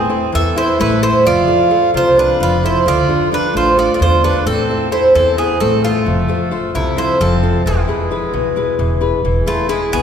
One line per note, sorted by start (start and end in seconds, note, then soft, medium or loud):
0.00 0.24 A3 soft
0.00 0.31 C4 medium
0.00 0.31 G#4 loud
0.09 0.47 E4 soft
0.09 0.47 A4 soft
0.09 0.47 C5 medium
0.32 0.66 E2 loud
0.32 0.78 E3 medium
0.32 0.56 A4 medium
0.32 0.57 E5 loud
0.56 0.93 E4 medium
0.56 0.78 E4 medium
0.56 0.94 A4 soft
0.56 0.94 C5 medium
0.56 0.80 C5 medium
0.80 1.12 A1 loud
0.80 1.24 A3 medium
0.80 1.01 E4 medium
0.80 1.03 B4 loud
1.02 1.21 E4 soft
1.02 1.24 E4 medium
1.02 1.21 A4 soft
1.02 1.21 C5 medium
1.02 1.24 C5 medium
1.25 1.42 F1 loud
1.25 1.70 F3 medium
1.25 1.91 F4 medium
1.25 1.91 D5 loud
1.47 1.69 F4 soft
1.47 1.70 A4 soft
1.47 1.70 C5 medium
1.70 2.08 F4 soft
1.70 2.08 A4 soft
1.70 2.08 C5 medium
1.94 2.27 C2 loud
1.94 2.39 C3 medium
1.94 2.16 F4 medium
1.94 2.17 C5 medium
2.17 2.39 D4 medium
2.17 2.54 F4 medium
2.17 2.54 A4 soft
2.17 2.42 B4 medium
2.17 2.54 C5 medium
2.40 2.73 F1 loud
2.40 2.85 F3 medium
2.40 2.62 F4 medium
2.40 2.63 B4 loud
2.63 2.85 E4 medium
2.63 2.82 F4 medium
2.63 2.82 A4 soft
2.63 2.82 C5 medium
2.63 2.86 C5 medium
2.86 3.02 D2 medium
2.86 3.30 D3 medium
2.86 3.29 F4 medium
2.86 3.30 D5 loud
3.08 3.30 D4 medium
3.08 3.31 F4 soft
3.08 3.31 A4 medium
3.31 3.68 D4 soft
3.31 3.54 D4 medium
3.31 3.69 F4 soft
3.31 3.69 A4 medium
3.31 3.56 B4 medium
3.54 3.87 A1 medium
3.54 3.99 A3 medium
3.54 3.77 F4 medium
3.54 3.78 C5 medium
3.77 4.14 D4 medium
3.77 4.14 F4 soft
3.77 3.93 F4 medium
3.77 4.14 A4 medium
3.77 3.93 D5 medium
3.94 3.99 F4 medium
3.94 4.00 D5 medium
4.00 4.33 E2 loud
4.00 4.44 D3 medium
4.00 4.22 F4 medium
4.00 4.23 C5 medium
4.23 4.42 D4 soft
4.23 4.45 D4 medium
4.23 4.42 F4 soft
4.23 4.42 A4 medium
4.23 4.45 B4 medium
4.46 4.62 A1 medium
4.46 4.90 A3 medium
4.46 4.89 C4 medium
4.46 4.89 A4 loud
4.70 4.90 E4 medium
4.70 4.90 A4 soft
4.70 4.91 C5 medium
4.91 5.28 E4 medium
4.91 5.14 E4 medium
4.91 5.28 A4 soft
4.91 5.13 C5 medium
4.91 5.29 C5 medium
5.15 5.47 E2 loud
5.15 5.59 E3 medium
5.15 5.37 C4 medium
5.15 5.36 A4 medium
5.38 5.60 B3 medium
5.38 5.74 E4 medium
5.38 5.59 G#4 medium
5.38 5.74 A4 soft
5.38 5.75 C5 medium
5.60 5.93 A1 loud
5.60 6.05 A3 medium
5.60 5.82 C4 medium
5.60 5.82 A4 medium
5.84 6.71 A3 medium
5.84 6.02 E4 medium
5.84 6.71 F4 medium
5.84 6.02 A4 soft
5.84 6.02 C5 medium
6.06 6.22 F1 medium
6.06 6.50 F3 medium
6.28 6.50 F4 medium
6.28 6.50 A4 soft
6.28 6.51 C5 medium
6.51 6.88 F4 soft
6.51 6.88 A4 soft
6.51 6.88 C5 medium
6.75 7.07 C2 medium
6.75 7.19 C3 medium
6.75 6.96 A3 medium
6.75 6.96 E4 medium
6.97 7.18 E4 medium
6.97 7.33 F4 medium
6.97 7.33 A4 soft
6.97 7.34 C5 medium
6.97 7.19 C5 medium
7.20 7.52 F1 loud
7.20 7.64 F3 medium
7.20 7.63 C4 medium
7.20 7.63 A4 medium
7.43 7.61 F4 soft
7.43 7.61 A4 soft
7.43 7.61 C5 medium
7.66 7.81 E1 medium
7.66 8.10 E3 medium
7.66 8.75 G#3 medium
7.66 8.76 E4 medium
7.88 8.09 E4 soft
7.88 8.10 G#4 soft
7.88 8.11 B4 medium
8.11 8.47 E4 soft
8.11 8.47 G#4 soft
8.11 8.48 B4 medium
8.33 8.65 B1 medium
8.33 8.77 B2 medium
8.56 8.92 E4 soft
8.56 8.93 G#4 soft
8.56 8.93 B4 medium
8.79 9.11 E1 loud
8.79 9.23 E3 medium
9.01 9.19 E4 medium
9.01 9.19 G#4 soft
9.01 9.20 B4 medium
9.25 9.40 E1 loud
9.25 9.68 E3 medium
9.46 9.68 A3 medium
9.46 9.67 E4 medium
9.46 9.68 F4 medium
9.46 9.68 G#4 soft
9.46 9.68 B4 medium
9.69 9.91 G#3 medium
9.69 10.02 E4 soft
9.69 9.93 E4 medium
9.69 10.02 G#4 soft
9.69 10.02 B4 medium
9.92 10.02 B1 medium
9.92 10.02 B2 medium
9.92 10.02 B3 medium
9.92 10.02 G#4 loud